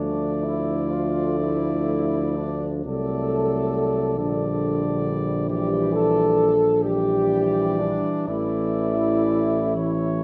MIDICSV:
0, 0, Header, 1, 6, 480
1, 0, Start_track
1, 0, Key_signature, -1, "minor"
1, 0, Tempo, 955414
1, 933, Tempo, 998336
1, 1412, Time_signature, 6, 3, 24, 8
1, 1413, Tempo, 879765
1, 3333, Tempo, 927357
1, 3813, Tempo, 985222
1, 5243, End_track
2, 0, Start_track
2, 0, Title_t, "Cornet"
2, 0, Program_c, 0, 56
2, 0, Note_on_c, 0, 74, 35
2, 1335, Note_off_c, 0, 74, 0
2, 1418, Note_on_c, 0, 74, 34
2, 2126, Note_off_c, 0, 74, 0
2, 2143, Note_on_c, 0, 74, 41
2, 2842, Note_off_c, 0, 74, 0
2, 2856, Note_on_c, 0, 74, 38
2, 3415, Note_off_c, 0, 74, 0
2, 3565, Note_on_c, 0, 74, 41
2, 4270, Note_off_c, 0, 74, 0
2, 4293, Note_on_c, 0, 74, 38
2, 4997, Note_off_c, 0, 74, 0
2, 5011, Note_on_c, 0, 73, 34
2, 5243, Note_off_c, 0, 73, 0
2, 5243, End_track
3, 0, Start_track
3, 0, Title_t, "French horn section"
3, 0, Program_c, 1, 60
3, 0, Note_on_c, 1, 62, 45
3, 217, Note_off_c, 1, 62, 0
3, 217, Note_on_c, 1, 64, 42
3, 451, Note_off_c, 1, 64, 0
3, 453, Note_on_c, 1, 65, 49
3, 687, Note_off_c, 1, 65, 0
3, 691, Note_on_c, 1, 64, 51
3, 1178, Note_on_c, 1, 62, 47
3, 1179, Note_off_c, 1, 64, 0
3, 1343, Note_off_c, 1, 62, 0
3, 1414, Note_on_c, 1, 69, 57
3, 2595, Note_off_c, 1, 69, 0
3, 2856, Note_on_c, 1, 67, 63
3, 3075, Note_off_c, 1, 67, 0
3, 3092, Note_on_c, 1, 69, 71
3, 3563, Note_on_c, 1, 67, 70
3, 3567, Note_off_c, 1, 69, 0
3, 4047, Note_off_c, 1, 67, 0
3, 4050, Note_on_c, 1, 62, 57
3, 4288, Note_on_c, 1, 64, 55
3, 4291, Note_off_c, 1, 62, 0
3, 5243, Note_off_c, 1, 64, 0
3, 5243, End_track
4, 0, Start_track
4, 0, Title_t, "Euphonium"
4, 0, Program_c, 2, 58
4, 0, Note_on_c, 2, 57, 34
4, 1337, Note_off_c, 2, 57, 0
4, 1419, Note_on_c, 2, 57, 37
4, 2127, Note_off_c, 2, 57, 0
4, 2139, Note_on_c, 2, 55, 41
4, 2839, Note_off_c, 2, 55, 0
4, 2857, Note_on_c, 2, 55, 45
4, 3415, Note_off_c, 2, 55, 0
4, 3569, Note_on_c, 2, 55, 48
4, 4272, Note_off_c, 2, 55, 0
4, 4297, Note_on_c, 2, 57, 42
4, 4999, Note_off_c, 2, 57, 0
4, 5015, Note_on_c, 2, 57, 36
4, 5243, Note_off_c, 2, 57, 0
4, 5243, End_track
5, 0, Start_track
5, 0, Title_t, "Trombone"
5, 0, Program_c, 3, 57
5, 0, Note_on_c, 3, 53, 41
5, 1394, Note_off_c, 3, 53, 0
5, 1411, Note_on_c, 3, 54, 39
5, 2135, Note_on_c, 3, 50, 47
5, 2143, Note_off_c, 3, 54, 0
5, 2854, Note_on_c, 3, 52, 52
5, 2862, Note_off_c, 3, 50, 0
5, 3424, Note_off_c, 3, 52, 0
5, 3563, Note_on_c, 3, 52, 53
5, 4270, Note_off_c, 3, 52, 0
5, 4290, Note_on_c, 3, 52, 49
5, 4995, Note_off_c, 3, 52, 0
5, 5010, Note_on_c, 3, 52, 40
5, 5243, Note_off_c, 3, 52, 0
5, 5243, End_track
6, 0, Start_track
6, 0, Title_t, "Tuba"
6, 0, Program_c, 4, 58
6, 0, Note_on_c, 4, 38, 38
6, 1393, Note_off_c, 4, 38, 0
6, 1412, Note_on_c, 4, 36, 39
6, 2140, Note_on_c, 4, 34, 43
6, 2148, Note_off_c, 4, 36, 0
6, 4146, Note_off_c, 4, 34, 0
6, 4290, Note_on_c, 4, 33, 42
6, 5243, Note_off_c, 4, 33, 0
6, 5243, End_track
0, 0, End_of_file